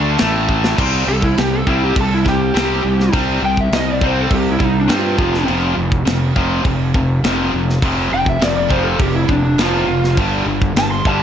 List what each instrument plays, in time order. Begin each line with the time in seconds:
Already playing: fingered electric bass D2, distorted electric guitar D3 A3 D4
0.18 fingered electric bass A1, distorted electric guitar A2 E3 A3, snare, crash
0.49 kick
0.64 snare
0.77 fingered electric bass C2, distorted electric guitar C3 G3 C4, kick, crash
1.07 fingered electric bass C2, distorted electric guitar C3 G3, lead electric guitar A4
1.22 lead electric guitar E4, kick
1.38 fingered electric bass C2, distorted electric guitar C3 G3, lead electric guitar G4, snare, crash
1.53 lead electric guitar A4
1.67 fingered electric bass C2, distorted electric guitar C3 G3 C4, lead electric guitar E4, kick
1.84 lead electric guitar G4
1.96 fingered electric bass C2, distorted electric guitar C3 G3, kick, crash
2.01 lead electric guitar A4
2.14 lead electric guitar E4
2.25 distorted electric guitar C3 G3, lead electric guitar G4, kick, snare
2.54 fingered electric bass C2, distorted electric guitar C3 G3 C4, lead electric guitar G4, snare, crash
2.83 fingered electric bass C2, distorted electric guitar C3 G3
3.00 snare
3.13 fingered electric bass C2, distorted electric guitar C3 G3 C4, kick, crash
3.42 fingered electric bass C2, distorted electric guitar C3 G3, lead electric guitar G5
3.57 lead electric guitar E5, kick
3.72 fingered electric bass C2, distorted electric guitar C3 G3, lead electric guitar D#5, snare, crash
3.92 lead electric guitar D5
4.01 distorted electric guitar C3 G3 C4, kick
4.06 lead electric guitar C5
4.22 lead electric guitar A4
4.31 fingered electric bass C2, distorted electric guitar C3 G3, kick, crash
4.35 lead electric guitar G4
4.51 lead electric guitar E4
4.59 fingered electric bass C2, distorted electric guitar C3 G3, kick
4.64 lead electric guitar D#4
4.80 lead electric guitar D4
4.88 fingered electric bass G2, distorted electric guitar C3 G3 C4, snare, crash
4.95 lead electric guitar F4
5.16 fingered electric bass F1, distorted electric guitar F2 C3 F3, kick
5.34 snare
5.46 fingered electric bass F1, distorted electric guitar F2 C3 F3, crash
5.76 fingered electric bass F1, distorted electric guitar F2 C3
5.92 kick
6.05 fingered electric bass F1, distorted electric guitar F2 C3, snare, crash
6.36 fingered electric bass F1, distorted electric guitar F2 C3 F3, kick
6.65 fingered electric bass F1, distorted electric guitar F2 C3, kick, crash
6.94 distorted electric guitar F2 C3, kick
7.24 fingered electric bass F1, distorted electric guitar F2 C3 F3, snare, crash
7.53 fingered electric bass F1, distorted electric guitar F2 C3
7.70 snare
7.82 fingered electric bass F1, distorted electric guitar F2 C3 F3, kick, crash
8.11 fingered electric bass F1, distorted electric guitar F2 C3, lead electric guitar G5
8.26 lead electric guitar E5, kick
8.41 fingered electric bass F1, distorted electric guitar F2 C3, lead electric guitar D5, snare, crash
8.57 lead electric guitar D5
8.69 distorted electric guitar F2 C3 F3, lead electric guitar C5, kick
8.84 lead electric guitar A4
8.99 fingered electric bass F1, distorted electric guitar F2 C3, lead electric guitar G4, kick, crash
9.15 lead electric guitar E4
9.29 fingered electric bass F1, distorted electric guitar F2 C3, lead electric guitar D4, kick
9.43 lead electric guitar D4
9.58 fingered electric bass F1, distorted electric guitar F2 C3 F3, lead electric guitar F4, snare, crash
9.88 fingered electric bass F1, distorted electric guitar F2 C3
10.04 snare
10.17 fingered electric bass G1, distorted electric guitar G2 D3 G3, kick, crash
10.46 fingered electric bass G1, distorted electric guitar G2 D3
10.62 kick
10.76 fingered electric bass G1, distorted electric guitar G2 D3, lead electric guitar A5, snare, crash
10.91 lead electric guitar C6
11.05 fingered electric bass G1, distorted electric guitar G2 D3 G3, lead electric guitar A5, kick